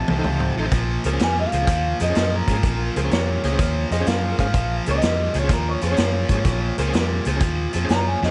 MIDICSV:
0, 0, Header, 1, 8, 480
1, 0, Start_track
1, 0, Key_signature, -5, "minor"
1, 0, Tempo, 477707
1, 738, Time_signature, 4, 2, 24, 8
1, 8347, End_track
2, 0, Start_track
2, 0, Title_t, "Electric slide guitar"
2, 0, Program_c, 0, 29
2, 0, Note_on_c, 0, 81, 113
2, 696, Note_off_c, 0, 81, 0
2, 3149, Note_on_c, 0, 73, 87
2, 3923, Note_off_c, 0, 73, 0
2, 3942, Note_on_c, 0, 75, 75
2, 4093, Note_off_c, 0, 75, 0
2, 4094, Note_on_c, 0, 77, 86
2, 4410, Note_off_c, 0, 77, 0
2, 4424, Note_on_c, 0, 77, 96
2, 4836, Note_off_c, 0, 77, 0
2, 8347, End_track
3, 0, Start_track
3, 0, Title_t, "Clean electric guitar"
3, 0, Program_c, 1, 27
3, 1241, Note_on_c, 1, 80, 85
3, 1385, Note_off_c, 1, 80, 0
3, 1404, Note_on_c, 1, 77, 95
3, 2012, Note_off_c, 1, 77, 0
3, 2034, Note_on_c, 1, 75, 82
3, 2181, Note_off_c, 1, 75, 0
3, 2200, Note_on_c, 1, 75, 82
3, 2344, Note_off_c, 1, 75, 0
3, 2357, Note_on_c, 1, 70, 108
3, 3279, Note_off_c, 1, 70, 0
3, 4927, Note_on_c, 1, 75, 94
3, 5378, Note_off_c, 1, 75, 0
3, 5410, Note_on_c, 1, 73, 73
3, 5549, Note_off_c, 1, 73, 0
3, 5561, Note_on_c, 1, 70, 84
3, 5715, Note_off_c, 1, 70, 0
3, 5715, Note_on_c, 1, 73, 86
3, 5851, Note_off_c, 1, 73, 0
3, 5863, Note_on_c, 1, 73, 92
3, 7260, Note_off_c, 1, 73, 0
3, 7947, Note_on_c, 1, 82, 93
3, 8098, Note_off_c, 1, 82, 0
3, 8115, Note_on_c, 1, 80, 79
3, 8262, Note_off_c, 1, 80, 0
3, 8275, Note_on_c, 1, 75, 78
3, 8347, Note_off_c, 1, 75, 0
3, 8347, End_track
4, 0, Start_track
4, 0, Title_t, "Saxophone section"
4, 0, Program_c, 2, 65
4, 239, Note_on_c, 2, 63, 78
4, 247, Note_on_c, 2, 65, 75
4, 252, Note_on_c, 2, 72, 87
4, 697, Note_off_c, 2, 63, 0
4, 701, Note_off_c, 2, 65, 0
4, 704, Note_off_c, 2, 72, 0
4, 1054, Note_on_c, 2, 61, 90
4, 1061, Note_on_c, 2, 68, 79
4, 1070, Note_on_c, 2, 70, 99
4, 1600, Note_off_c, 2, 61, 0
4, 1603, Note_off_c, 2, 68, 0
4, 1608, Note_off_c, 2, 70, 0
4, 2167, Note_on_c, 2, 61, 73
4, 2170, Note_on_c, 2, 68, 64
4, 2179, Note_on_c, 2, 70, 83
4, 2621, Note_off_c, 2, 61, 0
4, 2622, Note_off_c, 2, 68, 0
4, 2627, Note_off_c, 2, 70, 0
4, 2970, Note_on_c, 2, 61, 75
4, 2976, Note_on_c, 2, 68, 72
4, 2985, Note_on_c, 2, 70, 88
4, 3518, Note_off_c, 2, 61, 0
4, 3521, Note_off_c, 2, 68, 0
4, 3525, Note_off_c, 2, 70, 0
4, 4083, Note_on_c, 2, 61, 89
4, 4092, Note_on_c, 2, 68, 84
4, 4101, Note_on_c, 2, 70, 100
4, 4539, Note_off_c, 2, 61, 0
4, 4544, Note_off_c, 2, 68, 0
4, 4548, Note_off_c, 2, 70, 0
4, 4882, Note_on_c, 2, 61, 74
4, 4891, Note_on_c, 2, 68, 66
4, 4896, Note_on_c, 2, 70, 88
4, 5434, Note_off_c, 2, 61, 0
4, 5438, Note_off_c, 2, 68, 0
4, 5441, Note_off_c, 2, 70, 0
4, 5996, Note_on_c, 2, 61, 81
4, 6005, Note_on_c, 2, 68, 64
4, 6013, Note_on_c, 2, 70, 76
4, 6456, Note_off_c, 2, 61, 0
4, 6460, Note_off_c, 2, 68, 0
4, 6464, Note_off_c, 2, 70, 0
4, 6806, Note_on_c, 2, 61, 90
4, 6816, Note_on_c, 2, 68, 82
4, 6821, Note_on_c, 2, 70, 97
4, 7356, Note_off_c, 2, 61, 0
4, 7361, Note_off_c, 2, 68, 0
4, 7364, Note_off_c, 2, 70, 0
4, 7926, Note_on_c, 2, 61, 71
4, 7934, Note_on_c, 2, 68, 65
4, 7942, Note_on_c, 2, 73, 84
4, 8347, Note_off_c, 2, 61, 0
4, 8347, Note_off_c, 2, 68, 0
4, 8347, Note_off_c, 2, 73, 0
4, 8347, End_track
5, 0, Start_track
5, 0, Title_t, "Tonewheel organ"
5, 0, Program_c, 3, 16
5, 102, Note_on_c, 3, 69, 74
5, 106, Note_on_c, 3, 72, 85
5, 141, Note_off_c, 3, 69, 0
5, 143, Note_off_c, 3, 72, 0
5, 183, Note_on_c, 3, 63, 73
5, 183, Note_on_c, 3, 72, 73
5, 185, Note_on_c, 3, 69, 58
5, 259, Note_off_c, 3, 63, 0
5, 259, Note_off_c, 3, 72, 0
5, 261, Note_off_c, 3, 69, 0
5, 590, Note_on_c, 3, 63, 80
5, 590, Note_on_c, 3, 72, 94
5, 594, Note_on_c, 3, 69, 73
5, 664, Note_off_c, 3, 63, 0
5, 664, Note_off_c, 3, 72, 0
5, 666, Note_off_c, 3, 69, 0
5, 1063, Note_on_c, 3, 72, 96
5, 1066, Note_on_c, 3, 68, 85
5, 1102, Note_off_c, 3, 72, 0
5, 1103, Note_off_c, 3, 68, 0
5, 1136, Note_on_c, 3, 61, 62
5, 1136, Note_on_c, 3, 68, 60
5, 1139, Note_on_c, 3, 72, 63
5, 1216, Note_off_c, 3, 61, 0
5, 1216, Note_off_c, 3, 68, 0
5, 1217, Note_off_c, 3, 72, 0
5, 1545, Note_on_c, 3, 68, 70
5, 1547, Note_on_c, 3, 72, 79
5, 1582, Note_off_c, 3, 68, 0
5, 1583, Note_off_c, 3, 72, 0
5, 1624, Note_on_c, 3, 61, 66
5, 1625, Note_on_c, 3, 68, 64
5, 1629, Note_on_c, 3, 72, 72
5, 1700, Note_off_c, 3, 61, 0
5, 1700, Note_off_c, 3, 68, 0
5, 1702, Note_off_c, 3, 72, 0
5, 2017, Note_on_c, 3, 68, 67
5, 2021, Note_on_c, 3, 72, 84
5, 2058, Note_off_c, 3, 68, 0
5, 2060, Note_off_c, 3, 72, 0
5, 2103, Note_on_c, 3, 61, 64
5, 2107, Note_on_c, 3, 68, 60
5, 2110, Note_on_c, 3, 72, 72
5, 2179, Note_off_c, 3, 61, 0
5, 2181, Note_off_c, 3, 68, 0
5, 2182, Note_off_c, 3, 72, 0
5, 2508, Note_on_c, 3, 68, 62
5, 2513, Note_on_c, 3, 61, 67
5, 2516, Note_on_c, 3, 72, 76
5, 2583, Note_off_c, 3, 68, 0
5, 2585, Note_off_c, 3, 61, 0
5, 2587, Note_off_c, 3, 72, 0
5, 2985, Note_on_c, 3, 68, 75
5, 2985, Note_on_c, 3, 72, 76
5, 3022, Note_off_c, 3, 68, 0
5, 3022, Note_off_c, 3, 72, 0
5, 3058, Note_on_c, 3, 61, 81
5, 3059, Note_on_c, 3, 72, 84
5, 3060, Note_on_c, 3, 68, 71
5, 3136, Note_off_c, 3, 61, 0
5, 3137, Note_off_c, 3, 68, 0
5, 3137, Note_off_c, 3, 72, 0
5, 3461, Note_on_c, 3, 68, 89
5, 3464, Note_on_c, 3, 72, 102
5, 3500, Note_off_c, 3, 68, 0
5, 3502, Note_off_c, 3, 72, 0
5, 3537, Note_on_c, 3, 68, 76
5, 3539, Note_on_c, 3, 61, 84
5, 3541, Note_on_c, 3, 72, 88
5, 3616, Note_off_c, 3, 68, 0
5, 3617, Note_off_c, 3, 61, 0
5, 3618, Note_off_c, 3, 72, 0
5, 3949, Note_on_c, 3, 68, 84
5, 3951, Note_on_c, 3, 72, 94
5, 3984, Note_off_c, 3, 68, 0
5, 3985, Note_off_c, 3, 72, 0
5, 4017, Note_on_c, 3, 68, 72
5, 4022, Note_on_c, 3, 61, 78
5, 4022, Note_on_c, 3, 72, 85
5, 4096, Note_off_c, 3, 68, 0
5, 4098, Note_off_c, 3, 61, 0
5, 4098, Note_off_c, 3, 72, 0
5, 4420, Note_on_c, 3, 61, 80
5, 4421, Note_on_c, 3, 72, 97
5, 4422, Note_on_c, 3, 68, 73
5, 4499, Note_off_c, 3, 61, 0
5, 4499, Note_off_c, 3, 72, 0
5, 4500, Note_off_c, 3, 68, 0
5, 4897, Note_on_c, 3, 68, 71
5, 4906, Note_on_c, 3, 72, 75
5, 4938, Note_off_c, 3, 68, 0
5, 4943, Note_off_c, 3, 72, 0
5, 4972, Note_on_c, 3, 61, 67
5, 4974, Note_on_c, 3, 72, 68
5, 4975, Note_on_c, 3, 68, 56
5, 5054, Note_off_c, 3, 61, 0
5, 5054, Note_off_c, 3, 72, 0
5, 5055, Note_off_c, 3, 68, 0
5, 5378, Note_on_c, 3, 68, 69
5, 5382, Note_on_c, 3, 72, 79
5, 5419, Note_off_c, 3, 68, 0
5, 5420, Note_off_c, 3, 72, 0
5, 5457, Note_on_c, 3, 61, 68
5, 5463, Note_on_c, 3, 68, 61
5, 5465, Note_on_c, 3, 72, 74
5, 5536, Note_off_c, 3, 61, 0
5, 5539, Note_off_c, 3, 68, 0
5, 5540, Note_off_c, 3, 72, 0
5, 5866, Note_on_c, 3, 68, 74
5, 5868, Note_on_c, 3, 72, 83
5, 5903, Note_off_c, 3, 68, 0
5, 5904, Note_off_c, 3, 72, 0
5, 5938, Note_on_c, 3, 68, 62
5, 5940, Note_on_c, 3, 72, 74
5, 5945, Note_on_c, 3, 61, 67
5, 6017, Note_off_c, 3, 68, 0
5, 6018, Note_off_c, 3, 72, 0
5, 6020, Note_off_c, 3, 61, 0
5, 6345, Note_on_c, 3, 68, 60
5, 6348, Note_on_c, 3, 72, 71
5, 6349, Note_on_c, 3, 61, 65
5, 6421, Note_off_c, 3, 68, 0
5, 6423, Note_off_c, 3, 61, 0
5, 6423, Note_off_c, 3, 72, 0
5, 6820, Note_on_c, 3, 68, 86
5, 6825, Note_on_c, 3, 72, 92
5, 6860, Note_off_c, 3, 68, 0
5, 6862, Note_off_c, 3, 72, 0
5, 6908, Note_on_c, 3, 72, 86
5, 6910, Note_on_c, 3, 68, 73
5, 6911, Note_on_c, 3, 61, 71
5, 6982, Note_off_c, 3, 72, 0
5, 6983, Note_off_c, 3, 61, 0
5, 6983, Note_off_c, 3, 68, 0
5, 7306, Note_on_c, 3, 68, 87
5, 7313, Note_on_c, 3, 72, 96
5, 7343, Note_off_c, 3, 68, 0
5, 7347, Note_off_c, 3, 72, 0
5, 7395, Note_on_c, 3, 61, 74
5, 7396, Note_on_c, 3, 68, 68
5, 7399, Note_on_c, 3, 72, 80
5, 7465, Note_off_c, 3, 61, 0
5, 7465, Note_off_c, 3, 68, 0
5, 7467, Note_off_c, 3, 72, 0
5, 7792, Note_on_c, 3, 68, 82
5, 7795, Note_on_c, 3, 72, 101
5, 7826, Note_off_c, 3, 68, 0
5, 7827, Note_off_c, 3, 72, 0
5, 7880, Note_on_c, 3, 61, 64
5, 7882, Note_on_c, 3, 72, 73
5, 7883, Note_on_c, 3, 68, 61
5, 7948, Note_off_c, 3, 61, 0
5, 7949, Note_off_c, 3, 68, 0
5, 7949, Note_off_c, 3, 72, 0
5, 8280, Note_on_c, 3, 61, 67
5, 8284, Note_on_c, 3, 68, 61
5, 8288, Note_on_c, 3, 72, 73
5, 8347, Note_off_c, 3, 61, 0
5, 8347, Note_off_c, 3, 68, 0
5, 8347, Note_off_c, 3, 72, 0
5, 8347, End_track
6, 0, Start_track
6, 0, Title_t, "Overdriven electric guitar"
6, 0, Program_c, 4, 29
6, 95, Note_on_c, 4, 41, 88
6, 100, Note_on_c, 4, 48, 95
6, 238, Note_off_c, 4, 41, 0
6, 241, Note_off_c, 4, 48, 0
6, 252, Note_on_c, 4, 41, 92
6, 257, Note_on_c, 4, 48, 96
6, 547, Note_off_c, 4, 41, 0
6, 549, Note_off_c, 4, 48, 0
6, 577, Note_on_c, 4, 41, 76
6, 580, Note_on_c, 4, 48, 78
6, 720, Note_off_c, 4, 41, 0
6, 721, Note_off_c, 4, 48, 0
6, 740, Note_on_c, 4, 46, 83
6, 741, Note_on_c, 4, 53, 91
6, 1031, Note_off_c, 4, 46, 0
6, 1031, Note_off_c, 4, 53, 0
6, 1058, Note_on_c, 4, 46, 68
6, 1061, Note_on_c, 4, 53, 88
6, 1194, Note_off_c, 4, 46, 0
6, 1201, Note_off_c, 4, 53, 0
6, 1206, Note_on_c, 4, 46, 83
6, 1214, Note_on_c, 4, 55, 84
6, 1504, Note_off_c, 4, 46, 0
6, 1507, Note_off_c, 4, 55, 0
6, 1534, Note_on_c, 4, 46, 70
6, 1540, Note_on_c, 4, 53, 89
6, 1678, Note_off_c, 4, 46, 0
6, 1681, Note_off_c, 4, 53, 0
6, 1696, Note_on_c, 4, 46, 84
6, 1702, Note_on_c, 4, 53, 81
6, 1988, Note_off_c, 4, 46, 0
6, 1992, Note_off_c, 4, 53, 0
6, 2014, Note_on_c, 4, 46, 80
6, 2019, Note_on_c, 4, 53, 86
6, 2158, Note_off_c, 4, 46, 0
6, 2161, Note_off_c, 4, 53, 0
6, 2170, Note_on_c, 4, 46, 79
6, 2175, Note_on_c, 4, 53, 88
6, 2466, Note_off_c, 4, 46, 0
6, 2468, Note_off_c, 4, 53, 0
6, 2494, Note_on_c, 4, 46, 83
6, 2496, Note_on_c, 4, 53, 72
6, 2638, Note_off_c, 4, 46, 0
6, 2639, Note_off_c, 4, 53, 0
6, 2655, Note_on_c, 4, 46, 82
6, 2664, Note_on_c, 4, 53, 97
6, 2948, Note_off_c, 4, 46, 0
6, 2952, Note_off_c, 4, 53, 0
6, 2977, Note_on_c, 4, 46, 70
6, 2978, Note_on_c, 4, 53, 88
6, 3119, Note_off_c, 4, 46, 0
6, 3120, Note_off_c, 4, 53, 0
6, 3131, Note_on_c, 4, 46, 90
6, 3135, Note_on_c, 4, 55, 94
6, 3426, Note_off_c, 4, 46, 0
6, 3428, Note_off_c, 4, 55, 0
6, 3451, Note_on_c, 4, 46, 76
6, 3455, Note_on_c, 4, 53, 85
6, 3596, Note_off_c, 4, 46, 0
6, 3598, Note_off_c, 4, 53, 0
6, 3619, Note_on_c, 4, 46, 76
6, 3626, Note_on_c, 4, 53, 87
6, 3910, Note_off_c, 4, 46, 0
6, 3913, Note_off_c, 4, 53, 0
6, 3935, Note_on_c, 4, 46, 77
6, 3940, Note_on_c, 4, 53, 92
6, 4078, Note_off_c, 4, 46, 0
6, 4081, Note_off_c, 4, 53, 0
6, 4095, Note_on_c, 4, 46, 92
6, 4097, Note_on_c, 4, 53, 98
6, 4388, Note_off_c, 4, 46, 0
6, 4389, Note_off_c, 4, 53, 0
6, 4414, Note_on_c, 4, 46, 76
6, 4421, Note_on_c, 4, 53, 84
6, 4558, Note_off_c, 4, 46, 0
6, 4561, Note_off_c, 4, 53, 0
6, 4569, Note_on_c, 4, 46, 81
6, 4577, Note_on_c, 4, 53, 106
6, 4865, Note_off_c, 4, 46, 0
6, 4869, Note_off_c, 4, 53, 0
6, 4893, Note_on_c, 4, 46, 83
6, 4905, Note_on_c, 4, 53, 82
6, 5037, Note_off_c, 4, 46, 0
6, 5043, Note_off_c, 4, 53, 0
6, 5058, Note_on_c, 4, 46, 79
6, 5059, Note_on_c, 4, 55, 86
6, 5350, Note_off_c, 4, 46, 0
6, 5350, Note_off_c, 4, 55, 0
6, 5373, Note_on_c, 4, 46, 72
6, 5378, Note_on_c, 4, 53, 78
6, 5510, Note_off_c, 4, 46, 0
6, 5515, Note_off_c, 4, 53, 0
6, 5522, Note_on_c, 4, 46, 75
6, 5527, Note_on_c, 4, 53, 84
6, 5821, Note_off_c, 4, 46, 0
6, 5824, Note_off_c, 4, 53, 0
6, 5850, Note_on_c, 4, 46, 79
6, 5852, Note_on_c, 4, 53, 85
6, 5996, Note_off_c, 4, 46, 0
6, 5997, Note_off_c, 4, 53, 0
6, 6010, Note_on_c, 4, 46, 88
6, 6014, Note_on_c, 4, 53, 100
6, 6306, Note_off_c, 4, 46, 0
6, 6308, Note_off_c, 4, 53, 0
6, 6329, Note_on_c, 4, 46, 74
6, 6335, Note_on_c, 4, 53, 81
6, 6476, Note_off_c, 4, 46, 0
6, 6478, Note_off_c, 4, 53, 0
6, 6487, Note_on_c, 4, 46, 89
6, 6491, Note_on_c, 4, 53, 98
6, 6784, Note_off_c, 4, 46, 0
6, 6786, Note_off_c, 4, 53, 0
6, 6815, Note_on_c, 4, 46, 75
6, 6821, Note_on_c, 4, 53, 84
6, 6958, Note_off_c, 4, 46, 0
6, 6962, Note_off_c, 4, 53, 0
6, 6976, Note_on_c, 4, 46, 83
6, 6983, Note_on_c, 4, 55, 94
6, 7269, Note_off_c, 4, 46, 0
6, 7272, Note_off_c, 4, 55, 0
6, 7298, Note_on_c, 4, 46, 71
6, 7303, Note_on_c, 4, 53, 82
6, 7438, Note_off_c, 4, 46, 0
6, 7443, Note_off_c, 4, 53, 0
6, 7450, Note_on_c, 4, 46, 79
6, 7456, Note_on_c, 4, 53, 84
6, 7746, Note_off_c, 4, 46, 0
6, 7749, Note_off_c, 4, 53, 0
6, 7769, Note_on_c, 4, 46, 79
6, 7772, Note_on_c, 4, 53, 90
6, 7916, Note_off_c, 4, 46, 0
6, 7917, Note_off_c, 4, 53, 0
6, 7941, Note_on_c, 4, 46, 82
6, 7947, Note_on_c, 4, 53, 94
6, 8232, Note_off_c, 4, 46, 0
6, 8235, Note_off_c, 4, 53, 0
6, 8259, Note_on_c, 4, 46, 72
6, 8265, Note_on_c, 4, 53, 83
6, 8347, Note_off_c, 4, 46, 0
6, 8347, Note_off_c, 4, 53, 0
6, 8347, End_track
7, 0, Start_track
7, 0, Title_t, "Fingered electric bass"
7, 0, Program_c, 5, 33
7, 93, Note_on_c, 5, 36, 94
7, 214, Note_off_c, 5, 36, 0
7, 247, Note_on_c, 5, 37, 101
7, 496, Note_off_c, 5, 37, 0
7, 574, Note_on_c, 5, 33, 83
7, 694, Note_off_c, 5, 33, 0
7, 720, Note_on_c, 5, 34, 93
7, 971, Note_off_c, 5, 34, 0
7, 1056, Note_on_c, 5, 37, 89
7, 1176, Note_off_c, 5, 37, 0
7, 1207, Note_on_c, 5, 41, 89
7, 1456, Note_off_c, 5, 41, 0
7, 1534, Note_on_c, 5, 37, 95
7, 1654, Note_off_c, 5, 37, 0
7, 1684, Note_on_c, 5, 39, 85
7, 1934, Note_off_c, 5, 39, 0
7, 2020, Note_on_c, 5, 41, 90
7, 2138, Note_off_c, 5, 41, 0
7, 2174, Note_on_c, 5, 42, 93
7, 2420, Note_off_c, 5, 42, 0
7, 2488, Note_on_c, 5, 44, 82
7, 2610, Note_off_c, 5, 44, 0
7, 2646, Note_on_c, 5, 34, 89
7, 2895, Note_off_c, 5, 34, 0
7, 2979, Note_on_c, 5, 37, 91
7, 3098, Note_off_c, 5, 37, 0
7, 3132, Note_on_c, 5, 41, 96
7, 3379, Note_off_c, 5, 41, 0
7, 3458, Note_on_c, 5, 37, 93
7, 3577, Note_off_c, 5, 37, 0
7, 3608, Note_on_c, 5, 39, 88
7, 3857, Note_off_c, 5, 39, 0
7, 3930, Note_on_c, 5, 41, 91
7, 4052, Note_off_c, 5, 41, 0
7, 4092, Note_on_c, 5, 42, 100
7, 4339, Note_off_c, 5, 42, 0
7, 4409, Note_on_c, 5, 44, 87
7, 4531, Note_off_c, 5, 44, 0
7, 4561, Note_on_c, 5, 34, 99
7, 4812, Note_off_c, 5, 34, 0
7, 4901, Note_on_c, 5, 37, 92
7, 5019, Note_off_c, 5, 37, 0
7, 5051, Note_on_c, 5, 41, 89
7, 5298, Note_off_c, 5, 41, 0
7, 5373, Note_on_c, 5, 37, 98
7, 5494, Note_off_c, 5, 37, 0
7, 5519, Note_on_c, 5, 39, 84
7, 5771, Note_off_c, 5, 39, 0
7, 5854, Note_on_c, 5, 41, 85
7, 5975, Note_off_c, 5, 41, 0
7, 6015, Note_on_c, 5, 42, 84
7, 6261, Note_off_c, 5, 42, 0
7, 6327, Note_on_c, 5, 44, 83
7, 6450, Note_off_c, 5, 44, 0
7, 6477, Note_on_c, 5, 34, 96
7, 6730, Note_off_c, 5, 34, 0
7, 6814, Note_on_c, 5, 37, 86
7, 6935, Note_off_c, 5, 37, 0
7, 6976, Note_on_c, 5, 41, 85
7, 7221, Note_off_c, 5, 41, 0
7, 7300, Note_on_c, 5, 37, 90
7, 7418, Note_off_c, 5, 37, 0
7, 7446, Note_on_c, 5, 39, 89
7, 7696, Note_off_c, 5, 39, 0
7, 7784, Note_on_c, 5, 41, 87
7, 7901, Note_off_c, 5, 41, 0
7, 7934, Note_on_c, 5, 42, 85
7, 8180, Note_off_c, 5, 42, 0
7, 8264, Note_on_c, 5, 41, 84
7, 8347, Note_off_c, 5, 41, 0
7, 8347, End_track
8, 0, Start_track
8, 0, Title_t, "Drums"
8, 79, Note_on_c, 9, 48, 86
8, 179, Note_off_c, 9, 48, 0
8, 242, Note_on_c, 9, 47, 73
8, 343, Note_off_c, 9, 47, 0
8, 401, Note_on_c, 9, 45, 88
8, 501, Note_off_c, 9, 45, 0
8, 718, Note_on_c, 9, 42, 70
8, 721, Note_on_c, 9, 36, 104
8, 735, Note_on_c, 9, 38, 29
8, 818, Note_off_c, 9, 42, 0
8, 822, Note_off_c, 9, 36, 0
8, 835, Note_off_c, 9, 38, 0
8, 1044, Note_on_c, 9, 42, 66
8, 1144, Note_off_c, 9, 42, 0
8, 1199, Note_on_c, 9, 42, 81
8, 1216, Note_on_c, 9, 38, 112
8, 1299, Note_off_c, 9, 42, 0
8, 1316, Note_off_c, 9, 38, 0
8, 1526, Note_on_c, 9, 42, 65
8, 1627, Note_off_c, 9, 42, 0
8, 1681, Note_on_c, 9, 42, 97
8, 1683, Note_on_c, 9, 36, 116
8, 1781, Note_off_c, 9, 42, 0
8, 1783, Note_off_c, 9, 36, 0
8, 2005, Note_on_c, 9, 42, 67
8, 2106, Note_off_c, 9, 42, 0
8, 2160, Note_on_c, 9, 42, 76
8, 2177, Note_on_c, 9, 38, 112
8, 2260, Note_off_c, 9, 42, 0
8, 2277, Note_off_c, 9, 38, 0
8, 2487, Note_on_c, 9, 42, 63
8, 2489, Note_on_c, 9, 36, 75
8, 2588, Note_off_c, 9, 42, 0
8, 2589, Note_off_c, 9, 36, 0
8, 2645, Note_on_c, 9, 42, 80
8, 2646, Note_on_c, 9, 36, 106
8, 2746, Note_off_c, 9, 36, 0
8, 2746, Note_off_c, 9, 42, 0
8, 2975, Note_on_c, 9, 42, 62
8, 3075, Note_off_c, 9, 42, 0
8, 3128, Note_on_c, 9, 42, 79
8, 3145, Note_on_c, 9, 38, 109
8, 3228, Note_off_c, 9, 42, 0
8, 3245, Note_off_c, 9, 38, 0
8, 3452, Note_on_c, 9, 42, 60
8, 3469, Note_on_c, 9, 38, 32
8, 3552, Note_off_c, 9, 42, 0
8, 3569, Note_off_c, 9, 38, 0
8, 3603, Note_on_c, 9, 42, 84
8, 3607, Note_on_c, 9, 36, 123
8, 3620, Note_on_c, 9, 38, 33
8, 3704, Note_off_c, 9, 42, 0
8, 3707, Note_off_c, 9, 36, 0
8, 3721, Note_off_c, 9, 38, 0
8, 3932, Note_on_c, 9, 42, 63
8, 4033, Note_off_c, 9, 42, 0
8, 4084, Note_on_c, 9, 42, 77
8, 4101, Note_on_c, 9, 38, 108
8, 4185, Note_off_c, 9, 42, 0
8, 4202, Note_off_c, 9, 38, 0
8, 4408, Note_on_c, 9, 42, 54
8, 4409, Note_on_c, 9, 36, 72
8, 4509, Note_off_c, 9, 36, 0
8, 4509, Note_off_c, 9, 42, 0
8, 4558, Note_on_c, 9, 42, 73
8, 4563, Note_on_c, 9, 36, 97
8, 4658, Note_off_c, 9, 42, 0
8, 4663, Note_off_c, 9, 36, 0
8, 4884, Note_on_c, 9, 42, 65
8, 4985, Note_off_c, 9, 42, 0
8, 5040, Note_on_c, 9, 42, 85
8, 5057, Note_on_c, 9, 38, 108
8, 5140, Note_off_c, 9, 42, 0
8, 5157, Note_off_c, 9, 38, 0
8, 5363, Note_on_c, 9, 42, 67
8, 5463, Note_off_c, 9, 42, 0
8, 5518, Note_on_c, 9, 42, 83
8, 5519, Note_on_c, 9, 36, 107
8, 5535, Note_on_c, 9, 38, 35
8, 5618, Note_off_c, 9, 42, 0
8, 5620, Note_off_c, 9, 36, 0
8, 5635, Note_off_c, 9, 38, 0
8, 5841, Note_on_c, 9, 42, 63
8, 5942, Note_off_c, 9, 42, 0
8, 5994, Note_on_c, 9, 42, 76
8, 6011, Note_on_c, 9, 38, 102
8, 6094, Note_off_c, 9, 42, 0
8, 6111, Note_off_c, 9, 38, 0
8, 6318, Note_on_c, 9, 42, 66
8, 6323, Note_on_c, 9, 36, 79
8, 6419, Note_off_c, 9, 42, 0
8, 6423, Note_off_c, 9, 36, 0
8, 6477, Note_on_c, 9, 42, 77
8, 6480, Note_on_c, 9, 36, 105
8, 6494, Note_on_c, 9, 38, 30
8, 6578, Note_off_c, 9, 42, 0
8, 6581, Note_off_c, 9, 36, 0
8, 6595, Note_off_c, 9, 38, 0
8, 6810, Note_on_c, 9, 42, 67
8, 6911, Note_off_c, 9, 42, 0
8, 6966, Note_on_c, 9, 42, 85
8, 6983, Note_on_c, 9, 38, 116
8, 7067, Note_off_c, 9, 42, 0
8, 7084, Note_off_c, 9, 38, 0
8, 7284, Note_on_c, 9, 42, 60
8, 7384, Note_off_c, 9, 42, 0
8, 7439, Note_on_c, 9, 42, 83
8, 7444, Note_on_c, 9, 36, 117
8, 7539, Note_off_c, 9, 42, 0
8, 7544, Note_off_c, 9, 36, 0
8, 7764, Note_on_c, 9, 42, 61
8, 7864, Note_off_c, 9, 42, 0
8, 7925, Note_on_c, 9, 42, 74
8, 7942, Note_on_c, 9, 38, 99
8, 8026, Note_off_c, 9, 42, 0
8, 8043, Note_off_c, 9, 38, 0
8, 8269, Note_on_c, 9, 38, 58
8, 8347, Note_off_c, 9, 38, 0
8, 8347, End_track
0, 0, End_of_file